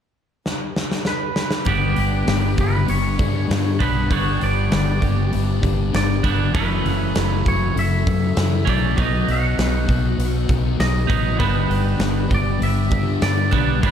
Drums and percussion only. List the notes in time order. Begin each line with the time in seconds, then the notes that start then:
0.46 snare
0.76 snare
0.92 snare
1.05 snare
1.36 snare
1.51 snare
1.65 kick, open hi-hat
1.96 open hi-hat
2.28 snare, open hi-hat
2.58 kick, open hi-hat
2.88 open hi-hat
3.19 kick, open hi-hat
3.51 snare, open hi-hat
3.80 kick, open hi-hat
4.11 kick, open hi-hat
4.41 open hi-hat
4.72 snare, open hi-hat
5.02 kick, open hi-hat
5.33 open hi-hat
5.63 kick, open hi-hat
5.94 snare, open hi-hat
6.24 kick, open hi-hat
6.55 kick, open hi-hat
6.86 open hi-hat
7.15 snare, open hi-hat
7.46 kick, open hi-hat
7.77 open hi-hat
8.07 kick, open hi-hat
8.37 snare, open hi-hat
8.67 kick, open hi-hat
8.98 kick, open hi-hat
9.28 open hi-hat
9.59 snare, open hi-hat
9.89 kick, open hi-hat
10.20 open hi-hat
10.49 kick, open hi-hat
10.80 snare, open hi-hat
11.10 kick, open hi-hat
11.40 kick, open hi-hat
11.71 open hi-hat
12.00 snare, open hi-hat
12.31 kick, open hi-hat
12.62 open hi-hat
12.91 kick, open hi-hat
13.22 snare, open hi-hat
13.51 kick, open hi-hat
13.83 kick, open hi-hat